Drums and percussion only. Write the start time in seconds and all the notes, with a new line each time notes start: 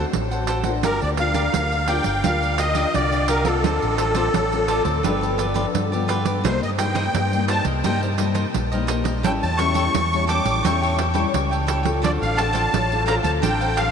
0.13 pandeiro
0.31 pandeiro
0.47 pandeiro
0.64 pandeiro
0.83 pandeiro
1.02 pandeiro
1.17 pandeiro
1.34 pandeiro
1.54 pandeiro
1.72 pandeiro
1.88 pandeiro
2.04 pandeiro
2.24 pandeiro
2.43 pandeiro
2.58 pandeiro
2.75 pandeiro
2.94 pandeiro
3.12 pandeiro
3.28 pandeiro
3.45 pandeiro
3.64 pandeiro
3.82 pandeiro
3.98 pandeiro
4.15 pandeiro
4.34 pandeiro
4.52 pandeiro
4.68 pandeiro
4.85 pandeiro
5.04 pandeiro
5.23 pandeiro
5.39 pandeiro
5.56 pandeiro
5.75 pandeiro
5.93 pandeiro
6.09 pandeiro
6.26 pandeiro
6.45 pandeiro
6.63 pandeiro
6.79 pandeiro
6.95 pandeiro
7.15 pandeiro
7.33 pandeiro
7.48 pandeiro
7.65 pandeiro
7.84 pandeiro
8.03 pandeiro
8.18 pandeiro
8.35 pandeiro
8.54 pandeiro
8.72 pandeiro
8.88 pandeiro
9.05 pandeiro
9.24 pandeiro
9.43 pandeiro
9.59 pandeiro
9.75 pandeiro
9.95 pandeiro
10.13 pandeiro
10.29 pandeiro
10.46 pandeiro
10.65 pandeiro
10.83 pandeiro
10.99 pandeiro
11.15 pandeiro
11.34 pandeiro
11.53 pandeiro
11.68 pandeiro
11.85 pandeiro
12.04 pandeiro
12.23 pandeiro
12.38 pandeiro
12.55 pandeiro
12.74 pandeiro
12.92 pandeiro
13.08 pandeiro
13.24 pandeiro
13.43 pandeiro
13.61 pandeiro
13.77 pandeiro